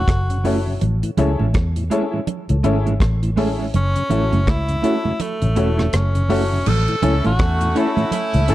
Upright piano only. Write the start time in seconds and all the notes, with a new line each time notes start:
0.44 E4 F#4 A4 C#5
1.18 E4 G#4 A4 C#5
1.91 E4 G#4 A4 C#5
2.50 A4 C#5
2.64 E4 G#4 A4 C#5
3.37 E4 G#4 A4 C#5
4.10 E4 F#4 A4 C#5
4.83 E4 F#4 A4 C#5
5.42 A4 C#5
5.57 E4 F#4 A4 C#5
6.29 E4 F#4 A4 C#5
7.03 C#4 E4 A4 C#5
7.76 C#4 E4 A4 C#5
8.34 A4 C#5
8.49 C#4 E4 A4 C#5